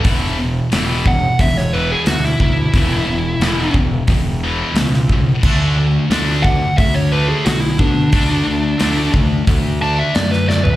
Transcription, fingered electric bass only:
X:1
M:4/4
L:1/8
Q:1/4=89
K:Dlyd
V:1 name="Fingered electric bass" clef=bass
E,,,2 E,,,2 E,,,2 D,, D,, | E,,, E,,, E,,, E,,, E,,,2 C,,2 | D,,2 D,,2 D,,2 B,,, B,, | D,, D,, D,, D,, D,,2 F,,2 |]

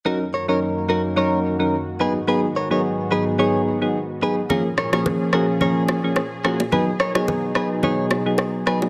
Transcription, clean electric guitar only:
X:1
M:4/4
L:1/16
Q:"Swing 16ths" 1/4=108
K:F#
V:1 name="Clean electric guitar"
[FA] z [Ac] [Ac] z2 [FA] z [Ac]2 z4 [GB] z | [GB] z [Ac] [Ac] z2 [GB] z [Gc]2 z4 [GB] z | [EA] z [Ac] [Ac] z2 [FA] z [Ac]2 z4 [FA] z | [GB] z [Ac] [Ac] z2 [GB] z [Gc]2 z4 [GB] z |]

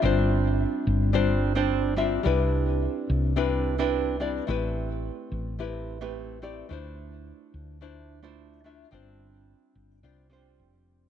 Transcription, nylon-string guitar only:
X:1
M:4/4
L:1/16
Q:1/4=108
K:Gmix
V:1 name="Nylon-string guitar"
[G,CDFc]8 [G,CDFc]3 [G,CDFc]3 [G,CDFe]2 | [G,CDEB]8 [G,CDEB]3 [G,CDEB]3 [G,CDEd]2 | [A,CEGB]8 [A,CEGB]3 [A,CEGB]3 [A,CEGd]2 | [A,DEFc]8 [A,DEFc]3 [A,DEFc]3 [A,DEFe]2 |
[G,CDFc]8 [G,CDFc]2 [G,CDFc]6 |]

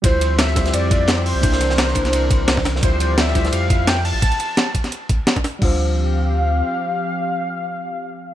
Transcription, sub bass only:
X:1
M:4/4
L:1/16
Q:"Swing 16ths" 1/4=172
K:Dm
V:1 name="Sub bass" clef=bass
D,,8 F,,6- F,, C,,- | C,,6 C,,6 C,,2 C,,2 | D,,8 F,,6- F,, A,,, | z16 |
D,,12 z4 | z16 |]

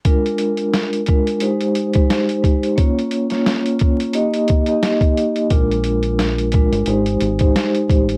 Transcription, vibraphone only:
X:1
M:4/4
L:1/16
Q:"Swing 16ths" 1/4=88
K:Bbmix
V:1 name="Vibraphone"
[A,DFB]6 [A,DFB]2 [A,EGc]3 [A,EGc]3 [A,EGc]2 | [B,_DF_d]3 [B,DFd]4- [B,DFd] [B,EGe]3 [B,EGe]4- [B,EGe] | [A,DFB]6 [A,DFB]2 [A,EGc]3 [A,EGc]3 [A,EGc]2 |]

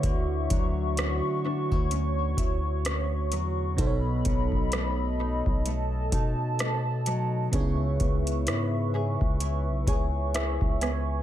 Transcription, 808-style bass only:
X:1
M:4/4
L:1/16
Q:"Swing 16ths" 1/4=64
K:Dlyd
V:1 name="808-style bass" clef=bass
D,,2 D,,3 z2 D,,3 D,,4 E,,2 | B,,,2 B,,,4- B,,, B,,,3 B,,6 | C,,2 C,,2 G,,3 C,,2 B,,, C,,3 C,,3 |]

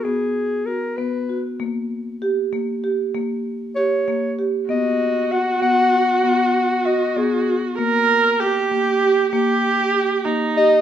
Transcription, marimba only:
X:1
M:5/8
L:1/8
Q:1/4=97
K:B
V:1 name="Marimba"
B,2 F B, F | A,2 =G A, G | A,2 =G A, G | B,2 F B, F |
B,2 F B, F | A,2 =G A, G | A,2 =G A, G |]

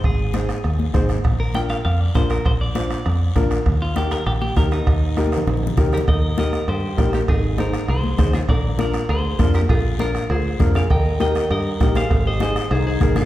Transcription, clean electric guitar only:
X:1
M:4/4
L:1/8
Q:1/4=199
K:Eb
V:1 name="Clean electric guitar"
A6 z2 | z B g f f d c B | c d6 z | z F G B G G B E- |
E6 z [GB] | [Be]2 [Be]2 [Gc]3 [GB] | [EA]2 [EB]2 [Ac]3 [FA] | [Bd]2 [Bd]2 [Ac]3 [GB] |
[FA]2 [FB]2 [Ac]3 [df] | [eg]2 [eg]2 [Be]3 [cf]- | [cf] [ce] [ce]2 [Ac] [Ac]2 [FB] |]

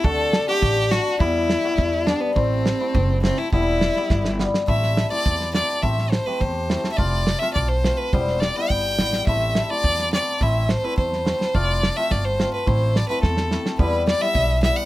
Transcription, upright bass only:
X:1
M:2/4
L:1/8
Q:1/4=105
K:Em
V:1 name="Upright bass" clef=bass
D,,2 A,,,2 | E,,2 E,,2 | A,,,2 F,,,2 | E,,,2 G,,,2 |
[K:Am] A,,,2 E,,2 | A,,,2 E,,2 | F,,,2 B,,,2 | E,,,2 G,,, A,,, |
A,,,2 E,,2 | A,,,2 E,,2 | F,,,2 G,,,2 | A,,,2 E,,2 |
[K:Em] E,,2 B,,,2 |]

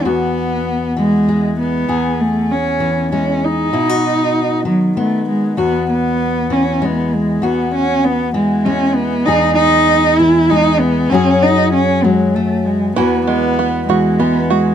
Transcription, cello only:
X:1
M:3/4
L:1/8
Q:1/4=98
K:E
V:1 name="Cello"
B,3 G,2 B,- | B, A, C2 C D- | D3 F, A, G, | B, B,2 C B, G, |
B, C B, G, C B, | D D2 E D B, | C D C G, A, G, | B, B,2 G, B, G, |]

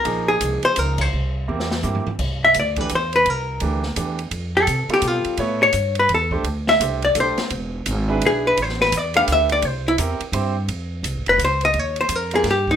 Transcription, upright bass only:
X:1
M:3/4
L:1/8
Q:"Swing" 1/4=169
K:Cphr
V:1 name="Upright bass" clef=bass
B,,,2 C,, z D,,2 | C,,2 =E,,2 G,, z | [K:Am] C,,2 D,,2 E,,2 | C,,2 D,,2 E,,2 |
F,,2 C, z B,, z | A,,2 G,,2 E,,2 | D,,2 C,,2 B,,, z | E,,,2 ^G,,,2 B,,,2 |
A,,,2 E,,2 D,,2 | C,,2 E,, z G,,2 | [K:Fm] F,,2 (3C,, A,,, F,,, D,,2 | E,,2 F,,2 G,,2 |]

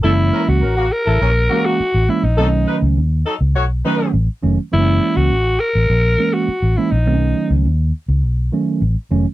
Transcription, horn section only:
X:1
M:4/4
L:1/16
Q:1/4=103
K:F#mix
V:1 name="Horn section"
[E=A] z [E,C^A] z [E,CA] [C,A,F] z [E=A] [E,C^A] z [C,A,F]2 z4 | [F,D=A] z [F,DB] z3 [F,DA] z [=A,Fc] z [F,DB]2 z4 | z16 | z16 |]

